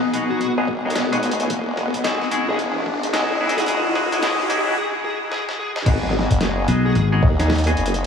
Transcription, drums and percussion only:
0.14 closed hi-hat medium
0.41 closed hi-hat soft
0.68 kick loud
0.90 closed hi-hat medium
0.95 snare loud
0.95 closed hi-hat medium
1.13 closed hi-hat medium
1.23 closed hi-hat medium
1.31 closed hi-hat medium
1.40 closed hi-hat medium
1.50 kick loud
1.50 closed hi-hat medium
1.77 snare soft
1.94 kick medium
1.94 closed hi-hat medium
2.04 snare loud
2.04 closed hi-hat medium
2.22 snare soft
2.32 closed hi-hat medium
2.59 closed hi-hat soft
2.86 kick loud
3.03 closed hi-hat medium
3.13 snare loud
3.13 closed hi-hat medium
3.49 closed hi-hat medium
3.58 closed hi-hat medium
3.60 closed hi-hat medium
3.66 closed hi-hat soft
3.68 closed hi-hat medium
3.95 snare soft
4.12 closed hi-hat medium
4.23 snare loud
4.23 closed hi-hat medium
4.40 snare soft
4.50 closed hi-hat medium
5.32 snare medium
5.49 snare medium
5.76 snare medium
5.86 kick loud
5.86 closed hi-hat medium
5.86 crash loud
6.03 snare soft
6.10 snare soft
6.19 snare soft
6.31 kick medium
6.31 closed hi-hat medium
6.41 snare loud
6.41 closed hi-hat medium
6.68 closed hi-hat medium
6.95 closed hi-hat soft
7.23 kick loud
7.40 snare soft
7.40 closed hi-hat medium
7.50 snare loud
7.50 closed hi-hat soft
7.53 closed hi-hat soft
7.55 closed hi-hat soft
7.58 closed hi-hat soft
7.58 closed hi-hat medium
7.64 closed hi-hat medium
7.67 closed hi-hat medium
7.77 closed hi-hat medium
7.86 closed hi-hat medium
7.94 closed hi-hat medium

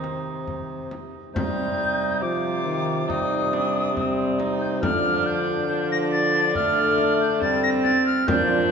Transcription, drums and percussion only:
0.04 frame drum soft
0.47 frame drum soft
0.91 frame drum soft
1.36 frame drum medium
3.10 frame drum medium
3.53 frame drum medium
3.97 frame drum medium
4.40 frame drum medium
4.83 frame drum medium
6.55 frame drum medium
6.98 frame drum medium
7.42 frame drum medium
7.85 frame drum medium
8.28 frame drum loud

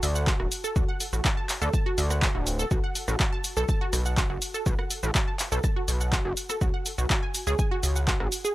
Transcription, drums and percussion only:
0.03 open hi-hat loud
0.03 shaker medium
0.15 shaker medium
0.27 kick loud
0.27 clap loud
0.27 shaker medium
0.40 cross-stick medium
0.52 open hi-hat loud
0.52 shaker medium
0.64 shaker medium
0.76 kick loud
0.76 shaker medium
1.00 open hi-hat loud
1.00 shaker medium
1.13 shaker medium
1.25 kick loud
1.25 cross-stick medium
1.25 clap loud
1.25 shaker medium
1.49 clap medium
1.49 open hi-hat loud
1.49 shaker medium
1.62 shaker medium
1.74 kick loud
1.74 shaker medium
1.98 open hi-hat loud
1.98 shaker medium
2.10 cross-stick medium
2.10 shaker medium
2.22 kick loud
2.22 clap loud
2.22 shaker medium
2.47 open hi-hat loud
2.47 shaker medium
2.59 shaker medium
2.71 kick loud
2.71 shaker medium
2.95 open hi-hat loud
2.95 shaker medium
3.08 cross-stick medium
3.08 shaker medium
3.20 kick loud
3.20 clap loud
3.20 shaker medium
3.44 open hi-hat loud
3.44 shaker medium
3.57 shaker medium
3.69 kick loud
3.69 shaker medium
3.93 cross-stick medium
3.93 open hi-hat loud
3.93 shaker medium
4.06 shaker medium
4.17 kick loud
4.17 clap loud
4.17 shaker medium
4.42 open hi-hat loud
4.42 shaker medium
4.54 shaker medium
4.66 kick loud
4.66 shaker medium
4.79 cross-stick medium
4.91 open hi-hat loud
4.91 shaker medium
5.03 shaker medium
5.15 kick loud
5.15 clap loud
5.15 shaker medium
5.39 clap medium
5.39 open hi-hat loud
5.39 shaker medium
5.52 shaker medium
5.64 kick loud
5.64 cross-stick medium
5.64 shaker medium
5.88 open hi-hat loud
5.88 shaker medium
6.01 shaker medium
6.13 kick loud
6.13 clap loud
6.13 shaker medium
6.37 open hi-hat loud
6.37 shaker medium
6.50 cross-stick medium
6.50 shaker medium
6.61 kick loud
6.61 shaker medium
6.86 open hi-hat medium
6.86 shaker medium
6.98 shaker medium
7.10 kick loud
7.10 clap loud
7.10 shaker medium
7.35 open hi-hat loud
7.35 shaker medium
7.47 shaker medium
7.59 kick loud
7.59 shaker medium
7.83 open hi-hat loud
7.83 shaker medium
7.96 shaker medium
8.08 kick loud
8.08 clap loud
8.08 shaker medium
8.20 cross-stick medium
8.32 open hi-hat loud
8.32 shaker medium
8.45 shaker medium

